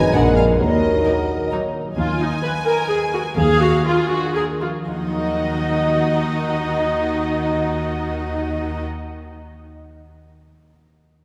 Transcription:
Already playing: harp G#2 B3 D#4, bassoon G#3, clarinet D#4, french horn section B4, cor anglais B4, flute D#5, violin section G#5
0.04 harp B4
0.14 tuba A#1, double bass section A#1, harp A#2, cello section A#2, viola section G#3 B3, violin section D4 A#4 F#5, clarinet D4, french horn section A#4, flute D#5
0.26 harp G#3
0.36 harp D4, flute D5, violin section F5
0.49 harp B4
0.58 cello section D#2, double bass section D#2, tuba D#2, harp D#3, bassoon F#3, clarinet D#4, french horn section F#4, cor anglais A#4, flute A#4, violin section D#5
0.72 harp D#4
0.94 harp F#4
1.04 viola section F#3 A#3, violin section D#4 A#4, harp D#5
1.18 harp A#5
1.29 harp F#5
1.41 harp D#5
1.51 viola section F#3 A#3, violin section D#4 A#4, harp F#4
1.63 harp D#4
1.74 harp F#3
1.86 harp D#4
1.97 cello section D#2, double bass section D#2, harp D#3, viola section F4, violin section G#5
2.20 harp D#4, viola section D#4
2.42 viola section B4, violin section B4, harp B4
2.66 viola section A#4, harp D#5
2.89 viola section G#4, violin section B4, harp B4
3.13 harp G#3, viola section F#4
3.36 cello section D#2, double bass section D#2, harp D#3, viola section G#4, violin section F5
3.59 harp D4, viola section F#4
3.85 viola section F4, violin section G#4 A#4, harp A#4
4.09 viola section F#4, harp D5
4.35 viola section G#4, harp A#4, violin section A#4
4.61 harp F3, viola section F4
4.87 double bass section D#2, harp D#3, cello section D#3, viola section D#4, violin section F#4 D#5 F#5
4.95 harp F#3
5.02 harp D#4
5.09 harp A#4
5.16 harp D#5

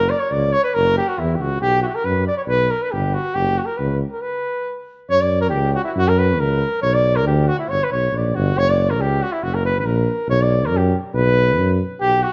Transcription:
Already playing: tuba F#1, flugelhorn A#4
0.10 flugelhorn D5
0.19 flugelhorn C#5
0.31 tuba C#2, flugelhorn D5
0.53 flugelhorn C#5
0.64 flugelhorn B4
0.75 tuba F#1, flugelhorn A#4
0.98 flugelhorn G4
1.08 flugelhorn F#4
1.19 tuba E2, flugelhorn E4
1.35 tuba C#2, flugelhorn G4
1.41 flugelhorn F#4
1.60 tuba B1, flugelhorn G4
1.82 flugelhorn E4 F#4
1.88 flugelhorn F#4
1.95 flugelhorn A#4
2.05 tuba F#2, flugelhorn B4
2.28 flugelhorn D5
2.38 flugelhorn C#5
2.47 tuba B1, flugelhorn B4
2.71 flugelhorn A#4
2.83 flugelhorn B4
2.92 tuba G1, flugelhorn G4
3.14 flugelhorn F#4
3.35 tuba F#1, flugelhorn G4
3.58 flugelhorn F#4
3.65 flugelhorn A#4
3.77 tuba C#2, flugelhorn B4
4.12 flugelhorn A#4
4.22 flugelhorn B4
5.10 tuba F#2, flugelhorn C#5
5.21 flugelhorn D5
5.41 flugelhorn A#4
5.50 tuba C#2, flugelhorn G4
5.73 flugelhorn F#4 G4
5.85 flugelhorn E4 F#4
5.91 flugelhorn E4
5.96 tuba F#2, flugelhorn F#4
6.08 flugelhorn A#4
6.19 flugelhorn B4
6.39 tuba C#2, flugelhorn A#4
6.82 tuba B1, flugelhorn C#5
6.94 flugelhorn D5
7.16 flugelhorn A#4
7.25 tuba D2, flugelhorn G4
7.48 flugelhorn F#4
7.59 flugelhorn E4
7.69 tuba G1, flugelhorn C#5
7.84 flugelhorn B4
7.91 tuba B1, flugelhorn C#5
8.12 tuba A#1
8.16 flugelhorn D5
8.35 tuba G1, flugelhorn F#4
8.56 tuba F#1, flugelhorn C#5
8.69 flugelhorn D5
8.90 flugelhorn A#4
8.99 tuba C#2, flugelhorn G4
9.23 flugelhorn F#4
9.32 flugelhorn E4
9.42 tuba F#1, flugelhorn F#4
9.54 flugelhorn A#4
9.66 flugelhorn B4
9.79 flugelhorn B4
9.84 tuba A#1, flugelhorn A#4
10.28 tuba B1, flugelhorn C#5
10.41 flugelhorn D5
10.66 flugelhorn A#4
10.70 tuba F#2
10.77 flugelhorn G4
11.14 tuba B1, flugelhorn B4
11.57 tuba F#2
12.01 tuba B1, flugelhorn G4
12.23 flugelhorn F#4

